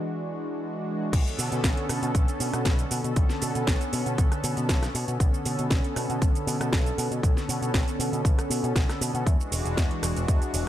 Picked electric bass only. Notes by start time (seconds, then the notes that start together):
1.13 B1
1.39 B2
1.52 B2
1.64 B1
1.89 B2
2.02 B2
2.15 B1
2.40 B2
2.54 B2
2.65 B1
2.91 B2
3.04 B2
3.16 B1
3.42 B2
3.55 B2
3.67 B1
3.93 B2
4.06 B2
4.18 B1
4.32 muted picked electric bass stroke
4.44 B2
4.57 B2
4.69 B1
4.95 B2
5.08 B2
5.20 B1
5.45 B2
5.59 B2
5.71 B1
5.96 B2
6.10 B2
6.22 B1
6.47 B2
6.60 B2
6.73 B1
6.98 B2
7.11 B2
7.23 B1
7.49 B2
7.62 B2
7.74 B1
7.99 B2
8.13 B2
8.25 B1
8.38 muted picked electric bass stroke
8.50 B2
8.63 B2
8.76 B1
9.01 B2
9.14 B2
9.27 E2
9.52 E1
9.65 E1
9.77 E2
10.03 E1
10.16 E1
10.28 E2
10.54 E1